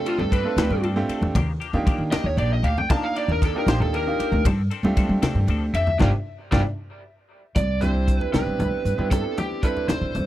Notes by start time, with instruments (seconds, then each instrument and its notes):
Already playing: grand piano A3 C4 D4 F4 G4
0.06 clean electric guitar C4 D4 A4, lead electric guitar F4, ride
0.18 upright bass G2, lead electric guitar A4, low conga
0.31 clean electric guitar F3 C4 D4 A4, lead electric guitar B4, kick, ride
0.45 grand piano A3 C4 D4 F4 A4
0.57 upright bass D2, clean electric guitar F3 C4 D4 A4, grand piano A3 C4 D4 F4 G4, snare, ride, high conga
0.70 upright bass G2, low conga
0.83 clean electric guitar F3 C4 D4 A4, ride, low conga
0.96 grand piano A3 C4 D4 F4 G4
1.09 clean electric guitar C4 D4 A4, muted upright bass stroke, ride
1.21 upright bass E2, low conga
1.35 upright bass D#2, clean electric guitar F3 A#3 D4 G4, kick, ride, high conga
1.60 clean electric guitar A#3 D4 G4, ride
1.73 upright bass D#3, grand piano A#3 D4 D#4 F4 G4, low conga
1.86 upright bass D#3, clean electric guitar F3 A#3 D4 G4, kick, ride
1.98 upright bass D#3
2.11 clean electric guitar F3 A#3 D4 G4, lead electric guitar D#5, muted upright bass stroke, snare, ride, high conga, low conga
2.24 upright bass D#2, lead electric guitar C#5
2.37 upright bass A#1, clean electric guitar F3 A#3 D4 G4, lead electric guitar D5, ride
2.53 lead electric guitar D#5
2.63 upright bass D2, clean electric guitar A#3 D4 G4, lead electric guitar F5, ride
2.78 lead electric guitar G5, low conga
2.90 clean electric guitar F3 A#3 D4 G4, grand piano A#3 D4 D#4 F4 A#4, lead electric guitar A5, kick, ride, high conga
3.04 lead electric guitar F5
3.16 clean electric guitar A#3 D4 G4, lead electric guitar D5, ride
3.28 upright bass D#2, lead electric guitar A#4, low conga
3.42 clean electric guitar F3 A#3 D4 G4, lead electric guitar A4, kick, ride
3.55 grand piano A#3 D4 D#4 F4 G4, lead electric guitar A#4
3.67 upright bass A#1, clean electric guitar F3 A#3 D4 G4, grand piano A#3 D4 D#4 F4 G4, lead electric guitar C5, snare, ride, high conga, low conga
3.80 upright bass D#2, lead electric guitar A4, low conga
3.93 clean electric guitar F3 A#3 D4 G4, lead electric guitar A#4, ride
4.07 grand piano A#3 D4 D#4 F4 G4
4.19 clean electric guitar A#3 D4 G4, muted upright bass stroke, ride
4.32 upright bass D2, low conga
4.45 upright bass G2, clean electric guitar F3 C4 D4 A4, kick, ride, high conga
4.71 clean electric guitar C4 D4 A4, ride
4.83 upright bass G3, grand piano A3 C4 D4 F4 G4, low conga
4.97 clean electric guitar F3 C4 D4 A4, upright bass G3, kick, ride
5.09 upright bass G3
5.22 clean electric guitar F3 C4 D4 A4, muted upright bass stroke, snare, ride, high conga, low conga
5.35 upright bass G2, low conga
5.47 upright bass D2, clean electric guitar F3 C4 D4 A4, ride
5.73 upright bass F2, clean electric guitar C4 D4 A4, lead electric guitar E5, ride
5.87 low conga
5.99 upright bass G1, clean electric guitar D4 F4 G4, grand piano D4 F4 G4, lead electric guitar G4 C5 D5, kick, snare, high conga
6.51 upright bass G1, clean electric guitar D4 F4 G4, grand piano D4 F4 G4, lead electric guitar G4 C5 D5, kick, snare, high conga
7.55 upright bass C2, lead electric guitar D5, kick, closed hi-hat, high conga
7.69 low conga
7.81 grand piano G3 C4 D4 E4 G4, lead electric guitar C5, closed hi-hat, low conga
7.95 low conga
8.08 kick, closed hi-hat
8.21 lead electric guitar B4, low conga
8.33 upright bass C2, grand piano B3 C4 D4 E4 G4, lead electric guitar B4, snare, closed hi-hat, high conga, low conga
8.47 upright bass C2
8.59 upright bass C2, closed hi-hat, low conga
8.85 upright bass G2, closed hi-hat
8.98 upright bass G2, grand piano B3 C4 D4 E4 G4, low conga
9.11 lead electric guitar A4, kick, closed hi-hat, high conga
9.25 low conga
9.38 lead electric guitar G4, closed hi-hat, low conga
9.52 low conga
9.63 grand piano G3 C4 D4 E4 A4, lead electric guitar B4, kick, closed hi-hat
9.77 low conga
9.88 upright bass C2, lead electric guitar C5, snare, closed hi-hat, high conga, low conga
10.01 upright bass C2
10.15 upright bass C2, closed hi-hat, low conga